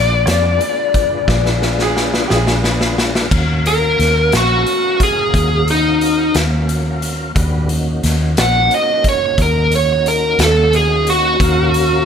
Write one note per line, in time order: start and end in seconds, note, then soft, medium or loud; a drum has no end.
0.00 0.25 A#1 medium
0.00 3.27 D4 medium
0.00 3.27 F4 medium
0.00 3.27 G#4 medium
0.00 3.27 B4 medium
0.00 2.60 D5 medium
0.26 0.58 F2 medium
0.26 0.29 C#5 medium
0.26 snare medium
0.26 closed hi-hat medium
0.30 1.76 D5 medium
0.61 closed hi-hat medium
0.94 kick medium
0.94 closed hi-hat soft
1.28 2.25 A#1 medium
1.28 kick medium
1.28 snare medium
1.46 snare soft
1.62 snare medium
1.79 2.30 G#4 medium
1.79 snare medium
1.97 snare medium
2.14 snare medium
2.28 3.28 A#1 medium
2.28 2.31 G4 medium
2.28 2.96 G#4 medium
2.28 snare medium
2.47 snare medium
2.64 snare medium
2.81 snare medium
2.98 snare medium
3.15 snare medium
3.31 3.95 D#2 medium
3.31 7.32 C#4 medium
3.31 7.32 F#4 medium
3.31 7.32 A#4 medium
3.31 7.32 F5 medium
3.31 kick medium
3.31 crash medium
3.66 4.32 A#4 medium
3.66 closed hi-hat soft
3.99 4.30 D#2 medium
3.99 snare soft
3.99 closed hi-hat soft
4.32 4.64 A#1 medium
4.32 snare loud
4.32 closed hi-hat medium
4.37 5.00 F#4 medium
4.66 closed hi-hat medium
5.00 5.67 G#4 medium
5.00 kick medium
5.00 closed hi-hat soft
5.34 6.31 D#2 medium
5.34 kick medium
5.34 closed hi-hat medium
5.68 6.34 D#4 medium
5.68 closed hi-hat medium
6.01 closed hi-hat soft
6.34 7.32 D#2 medium
6.34 snare loud
6.34 closed hi-hat medium
6.69 closed hi-hat medium
7.02 closed hi-hat medium
7.35 7.99 D#2 medium
7.35 7.69 D4 medium
7.35 7.68 F#4 medium
7.35 7.69 G4 medium
7.35 7.69 B4 medium
7.35 kick medium
7.35 closed hi-hat medium
7.69 11.37 A#3 medium
7.69 11.37 C#4 medium
7.69 11.37 D#4 medium
7.69 11.36 F#4 medium
7.69 closed hi-hat medium
8.03 8.34 D#2 medium
8.03 snare soft
8.03 closed hi-hat medium
8.37 8.68 A#1 medium
8.37 8.71 F#5 loud
8.37 snare loud
8.37 closed hi-hat medium
8.71 9.05 D#5 medium
8.71 closed hi-hat medium
9.04 kick medium
9.04 closed hi-hat medium
9.09 9.39 C#5 medium
9.38 10.35 D#2 medium
9.38 kick medium
9.38 closed hi-hat medium
9.42 9.73 A#4 medium
9.72 10.06 C#5 medium
9.72 closed hi-hat medium
10.06 10.39 A#4 medium
10.06 closed hi-hat medium
10.39 11.36 D#2 medium
10.39 snare loud
10.39 closed hi-hat medium
10.43 10.74 A4 medium
10.73 11.07 G#4 medium
10.73 closed hi-hat medium
11.07 12.05 F#4 medium
11.07 closed hi-hat medium
11.40 12.03 D#2 medium
11.40 12.05 C#4 medium
11.40 12.05 F#4 medium
11.40 12.05 A#4 medium
11.40 12.05 F5 medium
11.40 kick loud
11.40 closed hi-hat medium
11.74 closed hi-hat medium